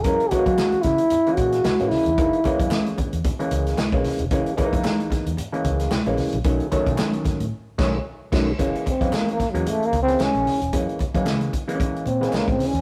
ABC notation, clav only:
X:1
M:4/4
L:1/16
Q:"Swing 16ths" 1/4=112
K:F#mix
V:1 name="Clav"
[E,G,A,C]2 [E,G,=A,^A,C]4- [E,G,=A,^A,C] z2 [E,G,A,C]3 z [E,G,A,C]2 z | [E,G,A,D]2 [E,G,A,C]4- [E,G,A,C] z2 [E,G,A,C]3 z [E,G,A,C]2 z | [E,G,A,C]2 [E,G,A,CD]4- [E,G,A,CD] z2 [E,G,A,C]3 z [E,G,A,C]2 z | [D,F,=A,C]2 [D,F,A,C]4- [D,F,A,C] z3 [D,F,A,C]2 z2 [D,F,A,C]2 |
[E,G,A,C]2 z [E,G,A,C]3 z [E,G,A,C]3 z [E,G,A,C]4 z | [E,G,A,C]2 z [E,G,A,C]3 z [E,G,A,^B,C]3 z [E,G,A,=B,C]4 z |]